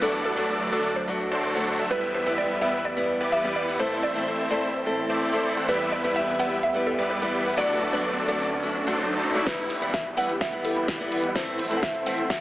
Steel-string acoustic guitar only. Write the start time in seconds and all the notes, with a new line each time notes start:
0.01 F#3 A3 D4 F#4
0.37 F#3 A3 D4 F#4
0.72 F#3 A3 D4 F#4
1.07 F#3 A3 D4 F#4
1.55 F#3 A3 D4 F#4
1.90 G3 B3 E4 G4
2.25 G3 B3 E4 G4
2.61 G3 B3 E4 G4
2.96 G3 B3 E4 G4
3.44 G3 B3 E4 G4
3.79 A2 A3 C4 E4 A4
4.14 A2 A3 C4 E4 A4
4.50 A2 A3 C4 E4 A4
4.85 A2 A3 C4 E4 A4
5.33 A2 A3 C4 E4 A4
5.68 G3 B3 E4 G4
6.04 G3 B3 E4 G4
6.39 G3 B3 E4 G4
6.74 G3 B3 E4 G4
7.22 G3 B3 E4 G4
7.57 F#3 A3 D4 F#4
7.92 F#3 A3 D4 F#4
8.28 F#3 A3 D4 F#4
8.63 F#3 A3 D4 F#4
8.87 F#3 A3 D4 F#4
9.34 F#3 A3 D4 F#4
9.46 E3 G3 B3 E4
9.81 E3 G3 B3 E4
10.17 E3 G3 B3 E4
10.52 E3 G3 B3 E4
10.99 E3 G3 B3 E4
11.35 A2 E3 A3 C4 E4
11.70 A2 E3 A3 C4 E4
12.06 A2 E3 A3 C4 E4